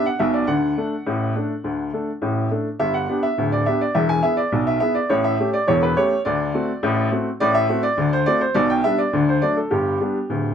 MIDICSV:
0, 0, Header, 1, 2, 480
1, 0, Start_track
1, 0, Tempo, 576369
1, 413, Time_signature, 2, 2, 24, 8
1, 8781, End_track
2, 0, Start_track
2, 0, Title_t, "Upright piano"
2, 0, Program_c, 0, 0
2, 49, Note_on_c, 0, 78, 67
2, 161, Note_on_c, 0, 76, 73
2, 164, Note_on_c, 0, 47, 67
2, 165, Note_on_c, 0, 35, 70
2, 171, Note_off_c, 0, 78, 0
2, 280, Note_on_c, 0, 74, 60
2, 287, Note_off_c, 0, 76, 0
2, 360, Note_off_c, 0, 35, 0
2, 360, Note_off_c, 0, 47, 0
2, 393, Note_on_c, 0, 78, 68
2, 395, Note_on_c, 0, 38, 55
2, 396, Note_on_c, 0, 50, 65
2, 406, Note_off_c, 0, 74, 0
2, 608, Note_off_c, 0, 38, 0
2, 608, Note_off_c, 0, 50, 0
2, 643, Note_on_c, 0, 57, 43
2, 648, Note_on_c, 0, 62, 41
2, 650, Note_on_c, 0, 69, 41
2, 778, Note_off_c, 0, 57, 0
2, 782, Note_off_c, 0, 62, 0
2, 783, Note_off_c, 0, 69, 0
2, 886, Note_on_c, 0, 45, 59
2, 887, Note_on_c, 0, 33, 62
2, 1094, Note_off_c, 0, 33, 0
2, 1094, Note_off_c, 0, 45, 0
2, 1128, Note_on_c, 0, 57, 39
2, 1132, Note_on_c, 0, 62, 42
2, 1134, Note_on_c, 0, 69, 41
2, 1262, Note_off_c, 0, 57, 0
2, 1265, Note_off_c, 0, 62, 0
2, 1266, Note_off_c, 0, 69, 0
2, 1366, Note_on_c, 0, 38, 54
2, 1366, Note_on_c, 0, 50, 58
2, 1573, Note_off_c, 0, 38, 0
2, 1573, Note_off_c, 0, 50, 0
2, 1610, Note_on_c, 0, 57, 34
2, 1614, Note_on_c, 0, 62, 37
2, 1615, Note_on_c, 0, 69, 41
2, 1743, Note_off_c, 0, 57, 0
2, 1746, Note_off_c, 0, 62, 0
2, 1746, Note_off_c, 0, 69, 0
2, 1746, Note_off_c, 0, 78, 0
2, 1846, Note_on_c, 0, 45, 56
2, 1850, Note_on_c, 0, 33, 57
2, 2054, Note_off_c, 0, 45, 0
2, 2056, Note_off_c, 0, 33, 0
2, 2090, Note_on_c, 0, 57, 35
2, 2091, Note_on_c, 0, 62, 33
2, 2095, Note_on_c, 0, 69, 39
2, 2224, Note_off_c, 0, 57, 0
2, 2224, Note_off_c, 0, 62, 0
2, 2227, Note_off_c, 0, 69, 0
2, 2328, Note_on_c, 0, 76, 78
2, 2330, Note_on_c, 0, 31, 58
2, 2330, Note_on_c, 0, 43, 60
2, 2447, Note_on_c, 0, 78, 64
2, 2452, Note_off_c, 0, 76, 0
2, 2537, Note_off_c, 0, 31, 0
2, 2537, Note_off_c, 0, 43, 0
2, 2574, Note_on_c, 0, 59, 43
2, 2578, Note_on_c, 0, 62, 42
2, 2580, Note_on_c, 0, 67, 48
2, 2679, Note_off_c, 0, 78, 0
2, 2688, Note_on_c, 0, 76, 76
2, 2706, Note_off_c, 0, 59, 0
2, 2709, Note_off_c, 0, 62, 0
2, 2711, Note_off_c, 0, 67, 0
2, 2814, Note_on_c, 0, 26, 66
2, 2814, Note_on_c, 0, 38, 60
2, 2919, Note_off_c, 0, 76, 0
2, 2933, Note_on_c, 0, 74, 70
2, 3018, Note_off_c, 0, 38, 0
2, 3019, Note_off_c, 0, 26, 0
2, 3050, Note_on_c, 0, 76, 75
2, 3053, Note_on_c, 0, 59, 45
2, 3054, Note_off_c, 0, 74, 0
2, 3057, Note_on_c, 0, 62, 43
2, 3063, Note_on_c, 0, 67, 41
2, 3172, Note_off_c, 0, 76, 0
2, 3174, Note_on_c, 0, 74, 67
2, 3185, Note_off_c, 0, 59, 0
2, 3188, Note_off_c, 0, 62, 0
2, 3192, Note_off_c, 0, 67, 0
2, 3286, Note_on_c, 0, 76, 78
2, 3289, Note_on_c, 0, 40, 70
2, 3290, Note_on_c, 0, 28, 62
2, 3294, Note_off_c, 0, 74, 0
2, 3407, Note_on_c, 0, 80, 77
2, 3410, Note_off_c, 0, 76, 0
2, 3495, Note_off_c, 0, 28, 0
2, 3495, Note_off_c, 0, 40, 0
2, 3521, Note_on_c, 0, 76, 80
2, 3527, Note_on_c, 0, 64, 44
2, 3528, Note_on_c, 0, 59, 39
2, 3530, Note_off_c, 0, 80, 0
2, 3535, Note_on_c, 0, 68, 44
2, 3638, Note_on_c, 0, 74, 74
2, 3647, Note_off_c, 0, 76, 0
2, 3661, Note_off_c, 0, 64, 0
2, 3662, Note_off_c, 0, 59, 0
2, 3667, Note_off_c, 0, 68, 0
2, 3765, Note_on_c, 0, 35, 67
2, 3767, Note_on_c, 0, 47, 64
2, 3837, Note_off_c, 0, 74, 0
2, 3888, Note_on_c, 0, 76, 75
2, 3973, Note_off_c, 0, 35, 0
2, 3974, Note_off_c, 0, 47, 0
2, 3987, Note_off_c, 0, 76, 0
2, 3999, Note_on_c, 0, 76, 77
2, 4003, Note_on_c, 0, 59, 47
2, 4008, Note_on_c, 0, 64, 42
2, 4013, Note_on_c, 0, 68, 43
2, 4119, Note_on_c, 0, 74, 72
2, 4126, Note_off_c, 0, 76, 0
2, 4138, Note_off_c, 0, 59, 0
2, 4141, Note_off_c, 0, 64, 0
2, 4145, Note_off_c, 0, 68, 0
2, 4243, Note_on_c, 0, 73, 77
2, 4246, Note_off_c, 0, 74, 0
2, 4248, Note_on_c, 0, 33, 63
2, 4248, Note_on_c, 0, 45, 73
2, 4366, Note_on_c, 0, 76, 81
2, 4368, Note_off_c, 0, 73, 0
2, 4453, Note_off_c, 0, 33, 0
2, 4453, Note_off_c, 0, 45, 0
2, 4495, Note_on_c, 0, 57, 51
2, 4497, Note_on_c, 0, 61, 46
2, 4499, Note_on_c, 0, 67, 53
2, 4559, Note_off_c, 0, 76, 0
2, 4608, Note_on_c, 0, 74, 80
2, 4625, Note_off_c, 0, 57, 0
2, 4627, Note_off_c, 0, 61, 0
2, 4628, Note_off_c, 0, 67, 0
2, 4727, Note_on_c, 0, 73, 88
2, 4729, Note_off_c, 0, 74, 0
2, 4731, Note_on_c, 0, 40, 71
2, 4733, Note_on_c, 0, 28, 72
2, 4848, Note_off_c, 0, 73, 0
2, 4853, Note_on_c, 0, 71, 77
2, 4934, Note_off_c, 0, 40, 0
2, 4935, Note_off_c, 0, 28, 0
2, 4970, Note_on_c, 0, 73, 84
2, 4971, Note_off_c, 0, 71, 0
2, 4978, Note_on_c, 0, 57, 55
2, 4979, Note_on_c, 0, 61, 51
2, 4982, Note_on_c, 0, 67, 50
2, 5107, Note_off_c, 0, 57, 0
2, 5108, Note_off_c, 0, 61, 0
2, 5110, Note_off_c, 0, 67, 0
2, 5161, Note_off_c, 0, 73, 0
2, 5204, Note_on_c, 0, 74, 79
2, 5210, Note_on_c, 0, 50, 79
2, 5211, Note_on_c, 0, 38, 73
2, 5413, Note_off_c, 0, 50, 0
2, 5414, Note_off_c, 0, 38, 0
2, 5446, Note_on_c, 0, 57, 51
2, 5447, Note_on_c, 0, 60, 52
2, 5453, Note_on_c, 0, 66, 60
2, 5578, Note_off_c, 0, 57, 0
2, 5579, Note_off_c, 0, 60, 0
2, 5584, Note_off_c, 0, 66, 0
2, 5688, Note_on_c, 0, 33, 80
2, 5690, Note_on_c, 0, 45, 81
2, 5891, Note_off_c, 0, 33, 0
2, 5891, Note_off_c, 0, 74, 0
2, 5892, Note_off_c, 0, 45, 0
2, 5925, Note_on_c, 0, 57, 50
2, 5930, Note_on_c, 0, 60, 49
2, 5934, Note_on_c, 0, 66, 54
2, 6057, Note_off_c, 0, 57, 0
2, 6061, Note_off_c, 0, 60, 0
2, 6064, Note_off_c, 0, 66, 0
2, 6166, Note_on_c, 0, 74, 98
2, 6171, Note_on_c, 0, 33, 68
2, 6171, Note_on_c, 0, 45, 80
2, 6283, Note_on_c, 0, 76, 94
2, 6286, Note_off_c, 0, 74, 0
2, 6372, Note_off_c, 0, 33, 0
2, 6373, Note_off_c, 0, 45, 0
2, 6406, Note_on_c, 0, 57, 53
2, 6409, Note_on_c, 0, 60, 51
2, 6412, Note_on_c, 0, 66, 59
2, 6512, Note_off_c, 0, 76, 0
2, 6520, Note_on_c, 0, 74, 88
2, 6537, Note_off_c, 0, 57, 0
2, 6540, Note_off_c, 0, 60, 0
2, 6542, Note_off_c, 0, 66, 0
2, 6640, Note_on_c, 0, 38, 73
2, 6642, Note_on_c, 0, 50, 75
2, 6750, Note_off_c, 0, 74, 0
2, 6770, Note_on_c, 0, 72, 82
2, 6846, Note_off_c, 0, 38, 0
2, 6847, Note_off_c, 0, 50, 0
2, 6880, Note_on_c, 0, 74, 90
2, 6885, Note_on_c, 0, 57, 53
2, 6887, Note_off_c, 0, 72, 0
2, 6888, Note_on_c, 0, 60, 50
2, 6891, Note_on_c, 0, 66, 53
2, 7002, Note_off_c, 0, 74, 0
2, 7004, Note_on_c, 0, 72, 80
2, 7017, Note_off_c, 0, 57, 0
2, 7019, Note_off_c, 0, 60, 0
2, 7021, Note_off_c, 0, 66, 0
2, 7115, Note_on_c, 0, 74, 90
2, 7119, Note_on_c, 0, 35, 65
2, 7119, Note_on_c, 0, 47, 80
2, 7124, Note_off_c, 0, 72, 0
2, 7240, Note_off_c, 0, 74, 0
2, 7245, Note_on_c, 0, 79, 84
2, 7325, Note_off_c, 0, 35, 0
2, 7325, Note_off_c, 0, 47, 0
2, 7361, Note_on_c, 0, 76, 90
2, 7364, Note_off_c, 0, 79, 0
2, 7367, Note_on_c, 0, 55, 42
2, 7372, Note_on_c, 0, 59, 47
2, 7375, Note_on_c, 0, 62, 51
2, 7482, Note_on_c, 0, 74, 70
2, 7483, Note_off_c, 0, 76, 0
2, 7499, Note_off_c, 0, 55, 0
2, 7502, Note_off_c, 0, 59, 0
2, 7504, Note_off_c, 0, 62, 0
2, 7604, Note_on_c, 0, 38, 70
2, 7607, Note_on_c, 0, 50, 75
2, 7712, Note_off_c, 0, 74, 0
2, 7735, Note_on_c, 0, 72, 73
2, 7809, Note_off_c, 0, 38, 0
2, 7811, Note_off_c, 0, 50, 0
2, 7843, Note_on_c, 0, 74, 79
2, 7848, Note_on_c, 0, 54, 41
2, 7851, Note_off_c, 0, 72, 0
2, 7854, Note_on_c, 0, 57, 42
2, 7854, Note_on_c, 0, 62, 47
2, 7966, Note_off_c, 0, 74, 0
2, 7967, Note_on_c, 0, 69, 61
2, 7981, Note_off_c, 0, 54, 0
2, 7985, Note_off_c, 0, 57, 0
2, 7985, Note_off_c, 0, 62, 0
2, 8082, Note_on_c, 0, 67, 61
2, 8085, Note_on_c, 0, 43, 63
2, 8088, Note_on_c, 0, 31, 58
2, 8089, Note_off_c, 0, 69, 0
2, 8293, Note_off_c, 0, 43, 0
2, 8294, Note_off_c, 0, 31, 0
2, 8330, Note_on_c, 0, 55, 41
2, 8335, Note_on_c, 0, 59, 42
2, 8338, Note_on_c, 0, 62, 41
2, 8463, Note_off_c, 0, 55, 0
2, 8467, Note_off_c, 0, 59, 0
2, 8469, Note_off_c, 0, 62, 0
2, 8576, Note_on_c, 0, 26, 59
2, 8576, Note_on_c, 0, 38, 57
2, 8781, Note_off_c, 0, 26, 0
2, 8781, Note_off_c, 0, 38, 0
2, 8781, Note_off_c, 0, 67, 0
2, 8781, End_track
0, 0, End_of_file